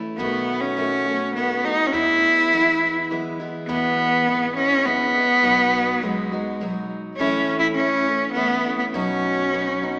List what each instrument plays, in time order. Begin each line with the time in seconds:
Already playing: steel-string acoustic guitar A3 C#4 E4
0.18 upright bass B1, steel-string acoustic guitar B2 D#3 A3 B3 F#4, cello B3
0.61 cello C#4
0.77 steel-string acoustic guitar D#3 A3 B3 F#4
1.06 steel-string acoustic guitar A3 B3 F#4
1.35 steel-string acoustic guitar D#3 A3 B3 F#4, cello B3
1.65 steel-string acoustic guitar A3 B3 F#4, cello D#4
1.87 cello C#4
1.93 upright bass E2, steel-string acoustic guitar E2 B2 E3 G#3 B3 E4, cello E4
2.53 steel-string acoustic guitar E3 G#3 B3 E4
3.11 steel-string acoustic guitar E3 G#3 B3 E4
3.40 steel-string acoustic guitar E3 G#3 B3 E4
3.68 upright bass E2, steel-string acoustic guitar E2 B2 E3 G#3 B3 E4, cello B3
4.27 upright bass G#1, steel-string acoustic guitar E3 G#3 B3 E4
4.57 steel-string acoustic guitar E3 G#3 B3 E4, cello C#4
4.85 upright bass A1, steel-string acoustic guitar E3 G#3 B3 E4, cello B3
5.15 steel-string acoustic guitar E3 G#3 B3 E4
5.43 upright bass B1, steel-string acoustic guitar B2 F#3 B3 D#4 F#4
6.02 upright bass C#2, steel-string acoustic guitar F#3 B3 D#4 F#4, cello G#3
6.32 steel-string acoustic guitar B3 D#4 F#4
6.60 upright bass B1, steel-string acoustic guitar F#3 B3 D#4 F#4
7.18 upright bass A1, steel-string acoustic guitar A2 E3 A3 C#4 E4, cello C#4
7.59 cello E4
7.75 steel-string acoustic guitar E3 A3, cello C#4
7.79 steel-string acoustic guitar C#4 E4
8.07 steel-string acoustic guitar A3 C#4 E4
8.33 steel-string acoustic guitar E3 A3 C#4, cello B3
8.38 steel-string acoustic guitar E4
8.66 steel-string acoustic guitar A3 C#4 E4
8.78 cello B3
8.93 upright bass B1, steel-string acoustic guitar B2 F#3 B3 D#4 F#4, cello C#4
9.52 steel-string acoustic guitar F#3 B3 D#4 F#4
9.82 steel-string acoustic guitar B3 D#4 F#4